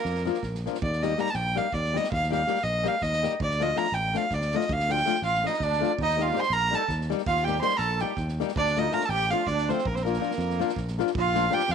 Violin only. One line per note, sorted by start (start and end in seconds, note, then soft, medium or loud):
0.00 0.44 A#4 loud
0.82 1.04 D5 medium
1.03 1.22 D#5 medium
1.20 1.32 A#5 loud
1.30 1.36 A5 medium
1.35 1.59 G5 medium
1.57 1.75 F5 medium
1.74 1.99 D5 medium
1.97 2.11 D#5 medium
2.12 2.30 F5 loud
2.32 2.65 F5 loud
2.64 2.89 D#5 loud
2.88 3.04 F5 medium
3.03 3.33 D#5 loud
3.42 3.64 D5 medium
3.62 3.79 D#5 loud
3.78 3.96 A#5 medium
3.94 4.18 G5 medium
4.17 4.35 F5 medium
4.34 4.57 D5 medium
4.56 4.74 D#5 medium
4.72 4.92 F5 loud
4.91 5.22 G5 loud
5.25 5.48 F5 loud
5.47 5.65 D#5 medium
5.63 5.92 D5 loud
6.03 6.24 D#5 loud
6.22 6.41 F5 loud
6.40 6.55 C6 loud
6.53 6.76 A#5 loud
6.75 6.90 A5 loud
7.27 7.46 F5 loud
7.45 7.61 G5 loud
7.62 7.78 C6 loud
7.77 8.03 A5 medium
7.77 7.79 A#5 medium
8.01 8.18 G5 medium
8.57 8.80 D5 loud
8.79 8.95 D#5 loud
8.93 9.07 A#5 loud
9.05 9.32 G5 loud
9.05 9.11 A5 medium
9.30 9.48 F5 loud
9.47 9.70 D5 medium
9.69 9.89 C5 medium
9.87 9.97 A#4 medium
9.95 10.04 C5 medium
10.03 10.78 A#4 medium
11.18 11.55 F5 loud
11.54 11.73 G5 loud
11.71 11.75 F5 loud